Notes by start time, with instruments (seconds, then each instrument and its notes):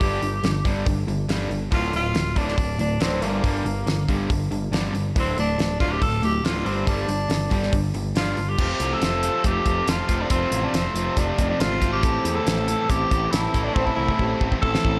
Already playing: tenor saxophone G4
0.01 picked electric bass G1, distorted electric guitar G2 D3 G3, kick, open hi-hat
0.22 picked electric bass G1, distorted electric guitar G2 D3, open hi-hat
0.43 picked electric bass G1, distorted electric guitar G2 D3, snare, open hi-hat
0.65 picked electric bass G1, distorted electric guitar G2 D3 G3, kick, open hi-hat
0.86 picked electric bass G1, distorted electric guitar G2 D3, kick, open hi-hat
1.07 picked electric bass G1, distorted electric guitar G2 D3, open hi-hat
1.28 picked electric bass G1, distorted electric guitar G2 D3 G3, snare, open hi-hat
1.49 picked electric bass G1, distorted electric guitar G2 D3, open hi-hat
1.71 picked electric bass D1, distorted electric guitar D2 A2 D3, tenor saxophone F4, kick, open hi-hat
1.93 picked electric bass D1, distorted electric guitar D2 A2, tenor saxophone F4, open hi-hat
2.14 picked electric bass D1, distorted electric guitar D2 A2, snare, open hi-hat
2.36 picked electric bass D1, distorted electric guitar D2 A2 D3, tenor saxophone D4, kick, open hi-hat
2.48 snare
2.57 picked electric bass D1, distorted electric guitar D2 A2, kick, open hi-hat
2.79 picked electric bass D1, distorted electric guitar D2 A2, tenor saxophone D4, open hi-hat
3.00 picked electric bass D1, distorted electric guitar D2 A2 D3, tenor saxophone C4, snare, open hi-hat
3.22 picked electric bass G1, distorted electric guitar G2 D3 G3, tenor saxophone A#3, open hi-hat
3.43 picked electric bass G1, distorted electric guitar G2 D3 G3, kick, open hi-hat
3.65 picked electric bass G1, distorted electric guitar G2 D3, open hi-hat
3.86 picked electric bass G1, distorted electric guitar G2 D3, snare, open hi-hat
4.08 picked electric bass G1, distorted electric guitar G2 D3 G3, kick, open hi-hat
4.30 picked electric bass G1, distorted electric guitar G2 D3, kick, open hi-hat
4.51 picked electric bass G1, distorted electric guitar G2 D3, open hi-hat
4.71 picked electric bass G1, distorted electric guitar G2 D3 G3, snare, open hi-hat
4.92 picked electric bass G1, distorted electric guitar G2 D3, open hi-hat
5.15 picked electric bass D1, distorted electric guitar D2 A2 D3, tenor saxophone C4, kick, open hi-hat
5.37 picked electric bass D1, distorted electric guitar D2 A2, tenor saxophone D4, open hi-hat
5.58 picked electric bass D1, distorted electric guitar D2 A2, snare, open hi-hat
5.80 picked electric bass D1, distorted electric guitar D2 A2 D3, tenor saxophone F4, kick, open hi-hat
5.91 tenor saxophone G4
6.01 picked electric bass D1, distorted electric guitar D2 A2, tenor saxophone A4, kick, open hi-hat
6.22 picked electric bass D1, distorted electric guitar D2 A2, tenor saxophone G4, open hi-hat
6.43 picked electric bass D1, distorted electric guitar D2 A2 D3, tenor saxophone F4, snare, open hi-hat
6.64 picked electric bass G1, distorted electric guitar G2 D3 G3, tenor saxophone C4, open hi-hat
6.86 picked electric bass G1, distorted electric guitar G2 D3 G3, tenor saxophone D4, kick, open hi-hat
7.07 picked electric bass G1, distorted electric guitar G2 D3, open hi-hat
7.28 picked electric bass G1, distorted electric guitar G2 D3, snare, open hi-hat
7.50 picked electric bass G1, distorted electric guitar G2 D3 G3, kick, open hi-hat
7.63 snare
7.72 picked electric bass G1, distorted electric guitar G2 D3, kick, open hi-hat
7.94 picked electric bass G1, distorted electric guitar G2 D3, open hi-hat
8.15 picked electric bass G1, distorted electric guitar G2 D3 G3, tenor saxophone F4, snare, open hi-hat
8.36 picked electric bass G1, distorted electric guitar G2 D3, open hi-hat
8.49 tenor saxophone G4
8.58 picked electric bass F1, distorted electric guitar F2 C3 F3 A3 C4 F4, kick, crash
8.80 picked electric bass C2, distorted electric guitar F3 A3 C4 F4, closed hi-hat
8.93 tenor saxophone A4
9.02 picked electric bass F1, distorted electric guitar F3 A3 C4 F4, snare, closed hi-hat
9.23 distorted electric guitar F2 C3 F3 A3 C4 F4, closed hi-hat
9.44 picked electric bass F1, distorted electric guitar F3 A3 C4 F4, tenor saxophone G4, kick, closed hi-hat
9.66 picked electric bass F1, distorted electric guitar F2 C3 F3 A3 C4 F4, kick, closed hi-hat
9.87 picked electric bass F1, distorted electric guitar F3 A3 C4 F4, tenor saxophone F4, snare, closed hi-hat
10.09 picked electric bass F1, overdriven electric guitar F2 C3, distorted electric guitar F3 A3 C4 F4, kick, closed hi-hat
10.21 tenor saxophone D4
10.30 picked electric bass F1, distorted electric guitar F2 C3 F3 A3 C4 F4, tenor saxophone C4, kick, closed hi-hat
10.51 picked electric bass A1, distorted electric guitar F3 A3 C4 F4, closed hi-hat
10.64 tenor saxophone D4
10.73 picked electric bass F1, distorted electric guitar F3 A3 C4 F4, tenor saxophone C4, snare, closed hi-hat
10.94 picked electric bass F1, distorted electric guitar F3 A3 C4 F4, closed hi-hat
10.98 distorted electric guitar F2 C3
11.16 picked electric bass F1, distorted electric guitar F3 A3 C4 F4, tenor saxophone D4, kick, closed hi-hat
11.38 picked electric bass F1, distorted electric guitar F2 C3 F3 A3 C4 F4, kick, closed hi-hat
11.50 tenor saxophone D4
11.59 picked electric bass G#1, distorted electric guitar F3 A3 C4 F4, tenor saxophone F4, snare, closed hi-hat
11.81 overdriven electric guitar F2 C3, distorted electric guitar F3 A3 C4 F4, kick, closed hi-hat
11.93 tenor saxophone G4
12.03 picked electric bass A1, distorted electric guitar A2 E3 A3 C4 E4 A4, grand piano C4 E4 A4, kick, closed hi-hat
12.25 picked electric bass E2, distorted electric guitar A3 C4 E4 A4, closed hi-hat
12.35 tenor saxophone A4
12.45 picked electric bass A1, distorted electric guitar A3 C4 E4 A4, grand piano C4 E4 A4, snare, closed hi-hat
12.67 distorted electric guitar A2 E3 A3 C4 E4 A4, closed hi-hat
12.89 picked electric bass A1, distorted electric guitar A3 C4 E4 A4, grand piano C4 E4 A4, tenor saxophone G4, kick, closed hi-hat
13.11 picked electric bass A1, distorted electric guitar A2 E3 A3 C4 E4 A4, grand piano E4 A4, kick, closed hi-hat
13.31 picked electric bass A1, distorted electric guitar A3 C4 E4 A4, grand piano C4 E4 A4, tenor saxophone E4, snare, closed hi-hat
13.54 picked electric bass A1, overdriven electric guitar A2 E3, distorted electric guitar A3 C4 E4 A4, kick, closed hi-hat
13.64 tenor saxophone D4
13.74 picked electric bass A1, distorted electric guitar A2 E3 A3 C4, tenor saxophone C4, grand piano C4 E4 A4, kick
13.78 distorted electric guitar E4 A4
13.85 tenor saxophone E4, kick
13.95 picked electric bass C2, distorted electric guitar A3 C4 E4 A4, tenor saxophone E4
14.08 kick
14.19 picked electric bass A1, distorted electric guitar A3 C4 E4 A4, grand piano C4 E4 G4, kick
14.40 picked electric bass A1, distorted electric guitar A2 E3 A3 C4 E4 A4, kick
14.52 kick
14.61 picked electric bass A1, distorted electric guitar A3 C4 E4 A4, grand piano C4 E4 A4, tenor saxophone A4, kick
14.75 snare
14.83 picked electric bass A1, distorted electric guitar A2 E3 A3 C4 E4 A4, grand piano C4 E4 A4, kick